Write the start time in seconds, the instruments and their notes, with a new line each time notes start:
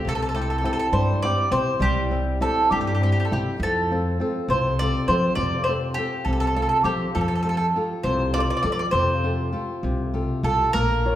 0.05 upright bass C2, nylon-string guitar C3, mandolin A4
0.15 mandolin A4
0.22 mandolin A4
0.29 mandolin A4
0.34 nylon-string guitar C4 E4 G4, mandolin A4
0.41 mandolin A4
0.50 mandolin A4
0.58 mandolin A4
0.63 nylon-string guitar C4 E4 G4, mandolin A4
0.73 mandolin A4
0.79 mandolin A4
0.92 upright bass G2, nylon-string guitar G3, mandolin C5
1.22 nylon-string guitar C4 E4 G4, mandolin D5
1.51 upright bass C3, nylon-string guitar C4 E4 G4, mandolin C5
1.80 upright bass C2, nylon-string guitar G3, mandolin G4
2.11 nylon-string guitar C4 E4 G4
2.40 nylon-string guitar C4 E4 G4, mandolin A4
2.71 upright bass G2, nylon-string guitar G3, mandolin G4
2.81 mandolin G4
2.87 mandolin G4
2.95 mandolin G4
3.00 nylon-string guitar C4 E4 G4, mandolin G4
3.12 mandolin G4
3.20 mandolin G4
3.25 mandolin A4
3.31 upright bass C3, nylon-string guitar C4 E4 G4, mandolin G4
3.60 upright bass F2, nylon-string guitar F3, mandolin A4
3.91 nylon-string guitar C4 F4 A4
4.20 nylon-string guitar C4 F4 A4
4.48 upright bass C2, nylon-string guitar C3, mandolin C5
4.79 nylon-string guitar C4 F4 A4, mandolin D5
5.08 upright bass F3, nylon-string guitar C4 F4 A4, mandolin C5
5.35 upright bass F2, nylon-string guitar C3, mandolin D5
5.64 mandolin C5
5.68 nylon-string guitar C4 F4 A4
5.94 nylon-string guitar C4 F4, mandolin G4
5.98 nylon-string guitar A4
6.25 upright bass C2, nylon-string guitar C3, mandolin A4
6.33 mandolin A4
6.40 mandolin A4
6.47 mandolin A4
6.56 nylon-string guitar C4 F4 A4, mandolin A4
6.62 mandolin A4
6.69 mandolin A4
6.84 upright bass F3, nylon-string guitar C4 F4 A4, mandolin G4
7.15 upright bass F2, nylon-string guitar F3, mandolin A4
7.21 mandolin A4
7.28 mandolin A4
7.35 mandolin A4
7.43 nylon-string guitar F4 G4 A4, mandolin A4
7.49 mandolin A4
7.57 mandolin A4
7.76 nylon-string guitar F4 G4 A4
8.03 upright bass C2, nylon-string guitar C3, mandolin C5
8.34 nylon-string guitar F4 G4 A4, mandolin D5
8.40 mandolin D5
8.50 mandolin D5
8.57 mandolin D5
8.63 upright bass F3, nylon-string guitar F4 G4 A4, mandolin D5
8.72 mandolin D5
8.79 mandolin D5
8.91 upright bass F2, nylon-string guitar C3, mandolin C5
9.24 nylon-string guitar F4 G4 A4
9.53 nylon-string guitar F4 G4 A4
9.83 upright bass C2, nylon-string guitar C3
10.14 nylon-string guitar F4 G4 A4
10.43 upright bass C2, nylon-string guitar F4 G4 A4, mandolin A4
10.73 upright bass A#1, nylon-string guitar A#3, mandolin A#4
11.05 nylon-string guitar F4 A#4 C#5